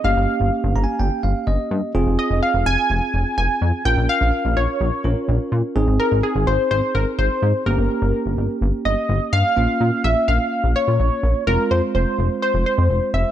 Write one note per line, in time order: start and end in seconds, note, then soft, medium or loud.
0.04 0.15 G1 loud
0.04 1.91 A#3 medium
0.04 1.91 C#4 medium
0.04 1.91 G4 medium
0.04 0.96 F5 loud
0.16 0.27 G1 loud
0.40 0.50 G1 loud
0.64 0.74 G1 loud
0.76 0.86 G1 loud
0.76 0.83 A#5 medium
0.84 0.98 G#5 medium
0.99 1.10 G1 loud
0.99 1.22 G5 medium
1.23 1.34 G1 medium
1.23 1.45 F5 medium
1.47 1.57 G1 loud
1.47 1.91 D#5 medium
1.71 1.81 G2 loud
1.95 2.05 F1 loud
1.95 3.81 C4 medium
1.95 3.81 F4 medium
1.95 3.81 G#4 medium
2.07 2.17 F1 medium
2.19 2.41 D#5 medium
2.30 2.41 F1 loud
2.43 2.67 F5 loud
2.54 2.65 F1 loud
2.66 2.77 F1 loud
2.66 3.37 G#5 loud
2.90 3.00 F1 loud
3.14 3.24 F1 medium
3.38 3.48 F1 loud
3.38 3.87 G#5 loud
3.61 3.72 F2 loud
3.85 3.96 A#1 loud
3.85 5.02 C#4 medium
3.85 5.02 F4 medium
3.85 5.02 A#4 medium
3.85 4.07 G5 loud
3.97 4.07 A#1 loud
4.09 4.58 F5 loud
4.21 4.31 A#1 loud
4.45 4.55 A#1 loud
4.57 4.67 A#1 loud
4.57 5.48 C#5 medium
4.81 4.91 A#1 loud
5.04 5.15 A#1 medium
5.04 5.76 C#4 soft
5.04 5.76 F4 soft
5.04 5.76 A#4 medium
5.28 5.38 A#1 loud
5.52 5.62 A#2 loud
5.76 5.86 G#1 loud
5.76 7.62 C4 medium
5.76 7.62 D#4 medium
5.76 7.62 G#4 medium
5.88 5.98 G#1 medium
6.00 6.24 A#4 loud
6.11 6.22 G#1 loud
6.23 6.48 G#4 loud
6.35 6.46 G#1 loud
6.47 6.57 G#1 loud
6.47 6.70 C5 loud
6.71 6.81 G#1 loud
6.71 6.95 C5 loud
6.95 7.05 G#1 medium
6.95 7.05 A#4 medium
7.19 7.29 G#1 loud
7.19 7.68 C5 loud
7.42 7.53 G#2 loud
7.66 7.76 G1 loud
7.66 9.53 A#3 medium
7.66 9.53 C#4 medium
7.66 9.53 G4 medium
7.66 8.57 A#4 loud
7.78 7.88 G1 medium
8.02 8.12 G1 loud
8.26 8.36 G1 medium
8.38 8.48 G1 medium
8.61 8.72 G1 loud
8.85 8.96 G1 loud
8.85 9.34 D#5 loud
9.09 9.19 G1 loud
9.33 9.43 G2 loud
9.33 10.06 F5 loud
9.57 9.67 A#1 loud
9.57 11.43 A#3 medium
9.57 11.43 C#4 medium
9.57 11.43 F4 medium
9.80 9.91 A#2 loud
10.04 10.15 A#1 loud
10.04 10.29 E5 loud
10.28 10.38 A#1 loud
10.28 10.77 F5 loud
10.64 10.74 A#1 medium
10.76 11.43 C#5 loud
10.88 10.98 A#2 loud
10.99 11.10 A#1 medium
11.23 11.34 A#1 loud
11.47 11.57 F1 loud
11.47 13.31 G#3 medium
11.47 13.31 C4 medium
11.47 13.31 F4 medium
11.47 11.72 A#4 loud
11.71 11.81 F2 loud
11.71 11.82 C5 medium
11.95 12.05 F1 loud
11.95 12.41 C5 loud
12.18 12.29 F1 loud
12.42 12.65 C5 loud
12.54 12.65 F1 loud
12.66 13.11 C5 medium
12.78 12.88 F2 medium
12.90 13.00 F1 medium
13.14 13.24 F1 loud
13.14 13.31 E5 loud